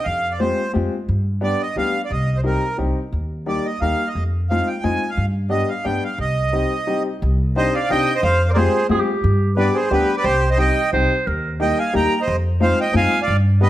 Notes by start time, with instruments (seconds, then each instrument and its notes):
0.05 upright bass F2, accordion F5
0.32 accordion D5
0.40 upright piano G#3 C4 F4 G4, accordion C5
0.73 upright bass F2, upright piano G#3 C4 F4 G4
1.09 upright bass G2
1.41 upright piano G3 B3 D4 G4, accordion D5
1.62 accordion D#5
1.76 upright bass D2, upright piano G3 B3 D4 G4, accordion F5
2.05 accordion D5
2.10 upright bass C2, accordion D#5
2.37 accordion C5
2.44 upright piano G3 C4 D#4 G4, accordion A#4
2.78 upright bass C2, upright piano G3 C4 D#4 G4
3.12 upright bass D#2
3.46 upright piano G3 A#3 D#4 G4, accordion D5
3.65 accordion D#5
3.81 upright bass D#2, upright piano G3 A#3 D#4 G4, accordion F5
4.08 accordion D#5
4.15 upright bass F2
4.50 upright piano G#3 C4 D#4 F4, accordion F5
4.68 accordion G5
4.83 upright bass F2, upright piano G#3 C4 D#4 F4, accordion G#5
5.10 accordion F5
5.17 upright bass G2
5.49 upright piano G3 B3 D4 G4, accordion D#5
5.69 accordion F5
5.85 upright bass G2, upright piano G3 B3 D4 G4, accordion G5
6.04 accordion F5
6.18 upright bass C2, accordion D#5
6.52 upright piano G3 C4 D#4 G4
6.87 upright piano G3 C4 D#4 G4
7.22 upright bass C2
7.56 upright piano C4 D4 D#4 G4, accordion C5 D#5
7.75 accordion D5 F5
7.90 upright bass C2, upright piano C4 D4 D#4 G4, accordion D#5 G5
8.15 accordion C5 D#5
8.23 upright bass F2, accordion C5 F5
8.49 accordion A#4 C5 D5
8.54 upright piano G#3 C4 F4 G4, accordion G#4 A#4 C5 D5
8.89 upright bass F#2, upright piano G#3 C4 F4 G4, clarinet G#4
8.94 clarinet G#4
9.00 clarinet G4
9.24 upright bass G2
9.57 upright piano G3 B3 D4 G4, accordion B4 D5
9.74 accordion G#4 C5
9.91 upright bass D2, upright piano G3 B3 D4 G4, accordion G4 B4
10.17 accordion B4 D5
10.23 upright bass C2, accordion G4 C5
10.50 accordion C5 D#5
10.57 upright piano G3 C4 D#4 G4, accordion D#5 G5
10.93 upright bass C2, upright piano G3 C4 D#4 G4, clarinet C5
11.27 upright bass D#2, clarinet A#4
11.60 upright piano G3 A#3 D#4 G4, accordion D#5 G5
11.78 accordion F5 G#5
11.94 upright bass D#2, upright piano G3 A#3 D#4 G4, accordion G5 A#5
12.21 accordion C5 D#5
12.28 upright bass F2
12.60 upright piano G#3 C4 D#4 F4, accordion C5 F5
12.80 accordion D#5 G5
12.93 upright bass F#2, upright piano G#3 C4 D#4 F4, accordion G#5
12.97 accordion F5
13.22 accordion D5 F5
13.28 upright bass G2
13.61 upright piano G3 B3 D4 G4, accordion B4 D#5